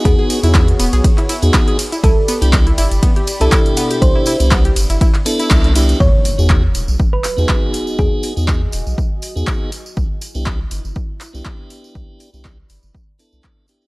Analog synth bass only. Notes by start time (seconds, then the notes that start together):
0.05 E2
0.43 E2
0.80 E1
0.93 B1
1.43 E2
2.04 C2
2.42 C2
2.78 G1
2.92 G1
3.41 C2
4.02 C2
4.40 C2
4.76 G1
4.90 G1
5.51 C2
6.00 E2
6.39 E2
6.75 E1
6.88 B1
7.38 E2
7.99 E2
8.37 E2
8.73 E1
8.87 B1
9.36 E2
9.97 C2
10.35 C2
10.71 G1
10.85 G1
11.35 C2
11.95 C2
12.34 C2
12.70 G1
12.83 G1
13.33 C2